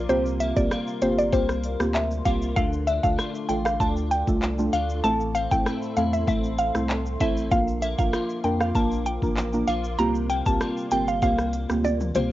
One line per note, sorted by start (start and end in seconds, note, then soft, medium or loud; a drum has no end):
0.00 0.70 F3 medium
0.00 0.39 A#3 medium
0.00 0.72 F4 medium
0.00 2.53 A#4 medium
0.00 2.53 F5 medium
0.09 0.53 C2 loud
0.09 2.56 C3 medium
0.09 0.52 A#3 loud
0.09 0.52 C4 medium
0.09 0.53 F4 medium
0.09 0.53 G4 loud
0.09 0.22 C5 loud
0.09 2.54 C6 loud
0.09 shaker medium
0.26 shaker medium
0.40 0.70 A#3 medium
0.40 0.53 E5 medium
0.40 closed hi-hat medium
0.40 shaker medium
0.56 0.70 C2 medium
0.56 0.98 A#3 medium
0.56 0.98 C4 medium
0.56 0.98 F4 medium
0.56 0.98 G4 medium
0.56 0.67 D5 medium
0.56 kick loud
0.56 shaker medium
0.71 2.24 G3 medium
0.71 1.32 A#3 medium
0.71 1.01 F4 medium
0.71 cross-stick loud
0.71 shaker medium
0.87 shaker medium
1.01 1.30 G1 medium
1.01 1.30 A#3 medium
1.01 1.30 C4 medium
1.01 1.30 F4 medium
1.01 2.26 F4 medium
1.01 1.31 G4 medium
1.01 1.14 C5 medium
1.01 closed hi-hat medium
1.01 shaker medium
1.18 1.29 D5 medium
1.18 shaker medium
1.32 1.76 C2 loud
1.32 1.53 A#3 loud
1.32 2.25 A#3 medium
1.32 1.54 C4 medium
1.32 1.54 F4 medium
1.32 1.54 G4 loud
1.32 1.77 C5 loud
1.32 kick loud
1.32 shaker medium
1.49 cross-stick medium
1.49 shaker medium
1.64 closed hi-hat medium
1.64 shaker medium
1.80 2.22 D2 medium
1.80 1.99 A#3 medium
1.80 2.00 C4 medium
1.80 2.00 F4 medium
1.80 2.00 G4 medium
1.80 cross-stick loud
1.80 shaker medium
1.95 2.07 E5 medium
1.95 clap loud
1.95 shaker medium
2.11 shaker medium
2.25 2.54 C2 medium
2.25 2.63 G3 medium
2.25 2.46 A#3 medium
2.25 2.63 A#3 medium
2.25 2.46 C4 medium
2.25 2.47 F4 medium
2.25 3.19 F4 medium
2.25 2.47 G4 medium
2.25 2.38 F5 medium
2.25 kick loud
2.25 closed hi-hat medium
2.25 shaker medium
2.42 shaker medium
2.56 3.00 D2 loud
2.56 5.04 D3 medium
2.56 3.00 A3 medium
2.56 3.00 D4 medium
2.56 3.00 F4 medium
2.56 7.47 A4 medium
2.56 3.00 A4 loud
2.56 2.69 F5 loud
2.56 5.02 F5 medium
2.56 5.01 D6 medium
2.56 kick loud
2.56 shaker medium
2.73 shaker medium
2.87 3.18 D4 medium
2.87 3.00 E5 medium
2.87 closed hi-hat medium
2.87 shaker medium
3.04 3.17 D2 medium
3.04 3.46 A3 medium
3.04 3.46 D4 medium
3.04 3.46 F4 medium
3.04 3.46 A4 medium
3.04 3.15 F5 medium
3.04 kick loud
3.04 shaker medium
3.18 4.73 A3 medium
3.18 3.79 D4 medium
3.18 3.48 F4 medium
3.18 cross-stick medium
3.18 shaker medium
3.35 shaker medium
3.49 3.78 A1 medium
3.49 3.78 A3 medium
3.49 3.78 D4 medium
3.49 4.73 F4 medium
3.49 3.78 F4 medium
3.49 3.78 A4 medium
3.49 3.61 G5 medium
3.49 closed hi-hat medium
3.49 shaker medium
3.65 3.76 F5 medium
3.65 cross-stick loud
3.65 shaker medium
3.80 4.23 D2 loud
3.80 4.01 A3 loud
3.80 4.72 D4 medium
3.80 4.01 D4 medium
3.80 4.01 F4 medium
3.80 4.01 A4 loud
3.80 3.93 A5 medium
3.80 kick loud
3.80 shaker medium
3.97 shaker medium
4.11 4.24 G5 medium
4.11 closed hi-hat medium
4.11 shaker medium
4.27 4.69 C2 medium
4.27 4.47 A3 medium
4.27 4.47 D4 medium
4.27 4.47 F4 medium
4.27 4.47 A4 medium
4.27 kick medium
4.27 shaker medium
4.42 clap loud
4.42 shaker medium
4.59 4.78 A3 medium
4.59 4.78 D4 medium
4.59 4.78 F4 medium
4.59 4.78 A4 medium
4.59 shaker medium
4.73 5.01 D2 loud
4.73 5.65 A3 medium
4.73 5.11 D4 medium
4.73 5.11 F4 medium
4.73 4.85 F5 medium
4.73 closed hi-hat medium
4.73 shaker medium
4.90 shaker medium
5.04 5.47 A1 loud
5.04 7.51 A2 medium
5.04 5.47 A3 medium
5.04 5.47 C4 medium
5.04 5.48 E4 medium
5.04 5.48 A4 loud
5.04 7.49 E5 medium
5.04 5.16 A5 loud
5.04 7.49 C6 loud
5.04 shaker medium
5.20 shaker medium
5.35 5.65 C4 medium
5.35 5.47 F5 medium
5.35 closed hi-hat medium
5.35 shaker medium
5.51 5.65 A1 medium
5.51 5.93 A3 medium
5.51 5.93 C4 medium
5.51 5.94 E4 medium
5.51 5.94 A4 medium
5.51 5.62 G5 medium
5.51 kick loud
5.51 shaker medium
5.66 7.19 A3 medium
5.66 6.26 C4 medium
5.66 5.96 E4 medium
5.66 cross-stick loud
5.66 shaker medium
5.82 shaker medium
5.97 6.25 E2 medium
5.97 6.25 A3 medium
5.97 6.25 C4 medium
5.97 7.20 E4 medium
5.97 6.26 E4 medium
5.97 6.26 A4 medium
5.97 6.09 F5 medium
5.97 closed hi-hat medium
5.97 shaker medium
6.13 6.24 E5 medium
6.13 shaker medium
6.27 6.71 A1 loud
6.27 6.48 A3 loud
6.27 6.48 C4 medium
6.27 7.20 C4 medium
6.27 6.49 E4 medium
6.27 6.49 A4 loud
6.27 6.40 E5 medium
6.27 kick loud
6.27 shaker medium
6.44 shaker medium
6.58 6.71 F5 medium
6.58 closed hi-hat medium
6.58 shaker medium
6.75 7.17 C2 medium
6.75 6.94 A3 medium
6.75 6.95 C4 medium
6.75 6.95 E4 medium
6.75 6.95 A4 medium
6.75 cross-stick medium
6.75 shaker medium
6.90 clap medium
6.90 shaker medium
7.06 shaker medium
7.20 7.49 A1 loud
7.20 7.41 A3 medium
7.20 7.58 A3 medium
7.20 7.41 C4 medium
7.20 7.58 C4 medium
7.20 7.41 E4 medium
7.20 7.59 E4 medium
7.20 7.42 A4 medium
7.20 7.33 E5 medium
7.20 kick loud
7.20 closed hi-hat medium
7.20 shaker medium
7.37 shaker medium
7.51 7.95 A#1 loud
7.51 7.95 A#3 medium
7.51 7.95 D4 medium
7.51 7.95 F4 medium
7.51 12.32 A#4 medium
7.51 7.95 A#4 loud
7.51 12.32 F5 medium
7.51 7.64 F5 loud
7.51 9.96 D6 loud
7.51 kick loud
7.51 shaker medium
7.68 shaker medium
7.82 8.13 A#3 medium
7.82 7.95 E5 medium
7.82 closed hi-hat medium
7.82 shaker medium
7.99 8.12 A#1 loud
7.99 8.41 A#3 medium
7.99 8.41 D4 medium
7.99 8.41 F4 medium
7.99 8.41 A#4 medium
7.99 8.10 F5 medium
7.99 kick loud
7.99 shaker medium
8.13 9.68 F3 medium
8.13 8.75 A#3 medium
8.13 8.44 F4 medium
8.13 cross-stick loud
8.13 shaker medium
8.30 shaker medium
8.44 8.72 F2 medium
8.44 8.73 A#3 medium
8.44 8.73 D4 medium
8.44 9.69 F4 medium
8.44 8.73 F4 medium
8.44 8.73 A#4 medium
8.44 8.57 G5 medium
8.44 closed hi-hat medium
8.44 shaker medium
8.61 8.72 F5 medium
8.61 cross-stick loud
8.61 shaker medium
8.75 9.18 A#1 loud
8.75 9.68 A#3 medium
8.75 8.96 A#3 loud
8.75 8.96 D4 medium
8.75 8.96 F4 medium
8.75 8.96 A#4 loud
8.75 8.88 A5 medium
8.75 kick loud
8.75 shaker medium
8.91 shaker medium
9.06 9.19 G5 medium
9.06 closed hi-hat medium
9.06 shaker medium
9.22 9.64 A1 medium
9.22 9.42 A#3 medium
9.22 9.42 D4 medium
9.22 9.42 F4 medium
9.22 9.42 A#4 medium
9.22 kick medium
9.22 shaker medium
9.37 clap loud
9.37 shaker medium
9.53 9.73 A#3 medium
9.53 9.73 D4 medium
9.53 9.73 F4 medium
9.53 9.73 A#4 medium
9.53 shaker medium
9.68 9.96 A#1 medium
9.68 10.60 F3 medium
9.68 10.29 A#3 medium
9.68 10.61 F4 medium
9.68 9.80 F5 medium
9.68 closed hi-hat medium
9.68 shaker medium
9.84 shaker medium
9.99 10.42 C2 loud
9.99 12.32 C3 medium
9.99 10.42 A#3 loud
9.99 10.42 C4 medium
9.99 10.42 F4 medium
9.99 10.43 G4 loud
9.99 10.11 A#5 loud
9.99 12.32 C6 loud
9.99 shaker medium
10.15 shaker medium
10.30 10.60 A#3 medium
10.30 10.42 G5 medium
10.30 closed hi-hat medium
10.30 shaker medium
10.46 10.59 C2 medium
10.46 10.88 A#3 medium
10.46 10.88 C4 medium
10.46 10.88 F4 medium
10.46 10.89 G4 medium
10.46 10.57 A5 medium
10.46 kick loud
10.46 shaker medium
10.61 12.14 G3 medium
10.61 11.21 A#3 medium
10.61 10.91 F4 medium
10.61 cross-stick loud
10.61 shaker medium
10.77 shaker medium
10.91 11.20 G1 medium
10.91 11.20 A#3 medium
10.91 11.20 C4 medium
10.91 12.16 F4 medium
10.91 11.20 F4 medium
10.91 11.20 G4 medium
10.91 11.04 G5 medium
10.91 closed hi-hat medium
10.91 shaker medium
11.08 11.19 F5 medium
11.08 shaker medium
11.22 11.66 C2 loud
11.22 11.43 A#3 loud
11.22 12.15 A#3 medium
11.22 11.43 C4 medium
11.22 11.44 F4 medium
11.22 11.44 G4 loud
11.22 11.67 F5 loud
11.22 kick loud
11.22 shaker medium
11.38 cross-stick medium
11.38 shaker medium
11.53 closed hi-hat medium
11.53 shaker medium
11.70 12.11 D2 medium
11.70 11.89 A#3 medium
11.70 11.89 C4 medium
11.70 11.89 F4 medium
11.70 11.89 G4 medium
11.70 cross-stick medium
11.70 shaker medium
11.84 11.97 D5 medium
11.84 high tom medium
11.84 shaker medium
12.01 mid tom medium
12.01 shaker medium
12.15 12.32 C2 medium
12.15 12.32 G3 medium
12.15 12.32 A#3 medium
12.15 12.32 C4 medium
12.15 12.32 F4 medium
12.15 12.32 G4 medium
12.15 12.28 C5 medium
12.15 closed hi-hat medium
12.15 mid tom medium
12.15 shaker medium